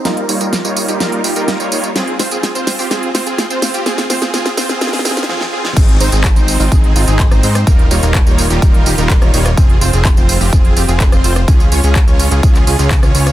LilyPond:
<<
  \new Staff \with { instrumentName = "Supersaw synth" } { \time 4/4 \key aes \major \tempo 4 = 126 <g bes ees' f' bes'>16 r16 <g bes ees' f' des''>16 <g bes ees' f' bes'>16 r16 <g bes ees' f' des''>8 <g bes ees' f' g'>16 <g bes ees' f' bes'>8 <g bes ees' f' g'>16 <g bes ees' f' bes'>8 <g bes ees' f' des''>16 <g bes ees' f' des''>16 r16 | <c' f' aes'>16 r16 <c' f' c''>16 <c' f' aes'>16 r16 <c' f' c''>8 <c' f' g'>16 <c' f' aes'>16 r16 <c' f' c''>16 <c' f' aes'>16 r16 <c' f' c''>8 <c' f' g'>16 | <c' f' aes'>16 r16 <c' f' c''>16 <c' f' aes'>16 <c' f' aes'>16 r16 <c' f' c''>16 <c' f' aes'>16 <c' f' aes'>16 r16 <c' f' aes'>16 r16 <c' f' aes'>16 r16 <c' f' aes'>16 r16 | <c' ees' aes'>16 r16 <c' ees' c''>16 <c' ees' aes'>16 r16 <c' ees' c''>8 <c' ees' f'>16 <c' ees' aes'>8 <c' ees' f'>16 <c' ees' aes'>8 <c' ees' c''>16 <c' ees' c''>16 r16 |
<g bes ees' f' bes'>16 r16 <g bes ees' f' des''>16 <g bes ees' f' bes'>16 r16 <g bes ees' f' des''>8 <g bes ees' f' g'>16 r8 <g bes ees' f' g'>16 <g bes ees' f' bes'>8 <g bes ees' f' des''>16 <g bes ees' f' des''>16 r16 | <c' f' aes'>16 r16 <c' f' c''>16 <c' f' aes'>16 r16 <c' f' c''>8 <c' f' g'>16 <c' f'>8 <c' f' g'>16 <c' f' aes'>8 <c' f' c''>16 <c' f' c''>16 r16 | <des' f' aes'>16 r16 <des' f' des''>16 <des' f' aes'>16 r16 <des' f' des''>8 <des' f' aes'>16 r8 <des' f' aes'>16 <des' f' aes'>8 <des' f' des''>16 <des' f' des''>16 r16 | }
  \new Staff \with { instrumentName = "Analog synth bass" } { \clef bass \time 4/4 \key aes \major r1 | r1 | r1 | aes,,8 aes,,16 aes,,8 aes,,8 aes,,16 aes,,8 aes,,16 aes,,8 aes,,16 aes,8 |
ees,,8 ees,,16 ees,,8 ees,,8 ees,,16 ees,,8 ees,,16 ees,,8 ees,,16 ees,,8 | f,,8 f,,16 f,,8 f,,8 f,,16 f,,8 f,,16 f,,8 f,,16 f,,8 | des,8 des,16 des,8 des,8 des,16 des,8 des,16 des,8 des,16 des,8 | }
  \new DrumStaff \with { instrumentName = "Drums" } \drummode { \time 4/4 <hh sn tamb>16 hh16 <hho tamb>16 <hh tamb>16 <hh sn tamb>16 <hh tamb>16 <hho tamb>16 <hh tamb>16 <hh sn tamb>16 hh16 <hho tamb>16 <hh tamb>16 <hh sn tamb>16 <hh tamb>16 <hho tamb>16 <hh tamb>16 | <hh sn tamb>16 hh16 <hho sn tamb>16 <hh tamb>16 <hh sn tamb>16 <hh tamb>16 <hho sn tamb>16 <hho tamb>16 <hh sn tamb>16 hh16 <hho sn tamb>16 <hh tamb>16 <hh sn tamb>16 <hh tamb>16 <hho sn tamb>16 <hh tamb>16 | <hh sn tamb>16 <hh sn tamb>16 <hho sn tamb>16 <hh sn tamb>16 <hh sn tamb>16 <hh sn tamb>16 <hho sn tamb>16 <hh sn tamb>16 <hh sn tamb>32 sn32 <hho sn>32 sn32 <hho sn tamb>32 sn32 <hh sn tamb>32 sn32 sn16 sn8 sn16 | <cymc hh bd tamb>16 hh16 <hho tamb>16 <hh tamb>16 <hc hh bd tamb>16 <hh tamb>16 <hho tamb>16 <hho tamb>16 <hh bd tamb>16 hh16 <hho tamb>16 <hh tamb>16 <hc hh bd tamb>16 <hh ss tamb>16 <hho tamb>16 <hh ss tamb>16 |
<hh bd tamb>16 hh16 <hho tamb>16 <hh tamb>16 <hc hh bd tamb>16 <hh tamb>16 <hho tamb>16 <hh tamb>16 <hh bd tamb>16 hh16 <hho tamb>16 <hh tamb>16 <hc hh bd tamb>16 <hh ss tamb>16 <hho tamb>16 <hh ss tamb>16 | <hh bd tamb>16 hh16 <hho tamb>16 <hh tamb>16 <hc hh bd tamb>16 <hh tamb>16 <hho tamb>16 <hho tamb>16 <hh bd tamb>16 hh16 <hho tamb>16 <hh tamb>16 <hc hh bd tamb>16 <hh ss tamb>16 <hho tamb>16 <hh ss tamb>16 | <hh bd tamb>16 <hh tamb>16 <hho tamb>16 <hh tamb>16 <hc hh bd tamb>16 <hh tamb>16 <hho tamb>16 <hh tamb>16 <hh bd tamb>16 <hc hh tamb>16 <hho tamb>16 <hh tamb>16 <hc hh bd tamb>16 <hh ss tamb>16 <hho tamb>16 <hh ss tamb>16 | }
>>